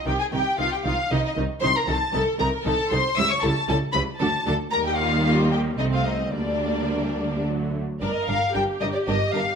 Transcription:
X:1
M:3/4
L:1/16
Q:1/4=114
K:Cm
V:1 name="Violin section"
g a g2 f g f2 e e z2 | [K:Gm] c' b a2 a2 b2 a2 c'2 | =e' ^c' a2 a2 =b2 a2 a2 | b g f2 f2 g2 e f e2 |
d8 z4 | d e f2 g2 e d e2 f2 |]
V:2 name="Violin section"
G A G2 F G F2 E E z2 | [K:Gm] c B A2 A2 B2 A2 c2 | =e ^c A2 A2 =B2 A2 A2 | B G F2 F2 G2 E F E2 |
D8 z4 | [DB]2 [DB]2 [DB]2 [DB]2 [DB]2 [DB]2 |]
V:3 name="Viola section"
[E,E]2 [E,E]2 [E,E]2 [E,E]2 [E,E]2 [E,E]2 | [K:Gm] [E,E]2 [E,E]2 [E,E]2 [E,E]2 [E,E]2 [E,E]2 | [G,=E]2 [G,E]2 [G,E]2 [G,E]2 [^F,D]2 [F,D]2 | [G,B,]8 [A,C]4 |
[G,B,]8 [^F,A,]2 z2 | B4 G8 |]
V:4 name="Cello section" clef=bass
C,2 C,2 C,2 C,2 C,2 C,2 | [K:Gm] C,2 C,2 C,2 C,2 C,2 C,2 | ^C,2 C,2 C,2 C,2 D,2 D,2 | E,8 C,4 |
D,8- D,2 z2 | G,,2 G,,2 G,,2 G,,2 G,,2 G,,2 |]
V:5 name="Double bass section" clef=bass
C,,2 C,,2 C,,2 C,,2 C,,2 C,,2 | [K:Gm] C,,2 C,,2 C,,2 C,,2 C,,2 C,,2 | ^C,,2 C,,2 C,,2 C,,2 D,,2 D,,2 | E,,8 C,,4 |
D,,8- D,,2 z2 | G,,,2 G,,,2 G,,,2 G,,,2 G,,,2 G,,,2 |]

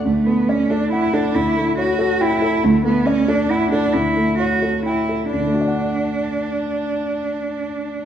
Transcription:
X:1
M:3/4
L:1/8
Q:1/4=136
K:D
V:1 name="Grand piano"
D,, A, d A f A | D,, A, c A g A | D,, A, d A f A | D,, A, c A g A |
[D,,D,A,Fdf]6- | [D,,D,A,Fdf]6 |]
V:2 name="Cello"
A, B, C D E D | E2 F2 E2 | A, B, C D E D | E2 F2 E2 |
D6- | D6 |]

